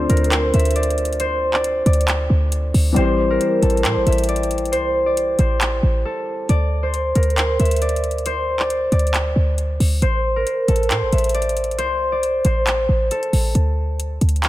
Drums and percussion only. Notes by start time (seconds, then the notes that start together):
0.10 closed hi-hat
0.17 closed hi-hat
0.24 closed hi-hat
0.32 clap, closed hi-hat
0.54 closed hi-hat
0.60 closed hi-hat
0.65 closed hi-hat
0.71 closed hi-hat
0.76 closed hi-hat
0.83 closed hi-hat
0.90 closed hi-hat
0.98 closed hi-hat
1.05 closed hi-hat
1.13 closed hi-hat
1.20 closed hi-hat
1.54 clap
1.64 closed hi-hat
1.86 closed hi-hat
1.93 closed hi-hat
2.01 closed hi-hat
2.08 clap, closed hi-hat
2.52 closed hi-hat
2.74 open hi-hat
2.96 closed hi-hat
3.41 closed hi-hat
3.63 closed hi-hat
3.70 closed hi-hat
3.77 closed hi-hat
3.85 clap, closed hi-hat
4.07 closed hi-hat
4.12 closed hi-hat
4.18 closed hi-hat
4.24 closed hi-hat
4.29 closed hi-hat
4.36 closed hi-hat
4.43 closed hi-hat
4.51 closed hi-hat
4.58 closed hi-hat
4.65 closed hi-hat
4.73 closed hi-hat
5.17 closed hi-hat
5.39 closed hi-hat
5.61 clap, closed hi-hat
6.49 closed hi-hat
6.94 closed hi-hat
7.15 closed hi-hat
7.23 closed hi-hat
7.30 closed hi-hat
7.38 clap, closed hi-hat
7.60 closed hi-hat
7.65 closed hi-hat
7.71 closed hi-hat
7.76 closed hi-hat
7.82 closed hi-hat
7.89 closed hi-hat
7.96 closed hi-hat
8.04 closed hi-hat
8.11 closed hi-hat
8.18 closed hi-hat
8.26 closed hi-hat
8.60 clap
8.70 closed hi-hat
8.92 closed hi-hat
8.99 closed hi-hat
9.07 closed hi-hat
9.14 clap, closed hi-hat
9.58 closed hi-hat
9.80 open hi-hat
10.02 closed hi-hat
10.47 closed hi-hat
10.68 closed hi-hat
10.76 closed hi-hat
10.83 closed hi-hat
10.91 clap, closed hi-hat
11.13 closed hi-hat
11.18 closed hi-hat
11.24 closed hi-hat
11.29 closed hi-hat
11.35 closed hi-hat
11.42 closed hi-hat
11.49 closed hi-hat
11.57 closed hi-hat
11.64 closed hi-hat
11.71 closed hi-hat
11.79 closed hi-hat
12.23 closed hi-hat
12.45 closed hi-hat
12.67 clap, closed hi-hat
13.11 closed hi-hat
13.23 closed hi-hat
13.33 open hi-hat
13.55 closed hi-hat
14.00 closed hi-hat
14.21 closed hi-hat
14.29 closed hi-hat
14.36 closed hi-hat
14.43 clap, closed hi-hat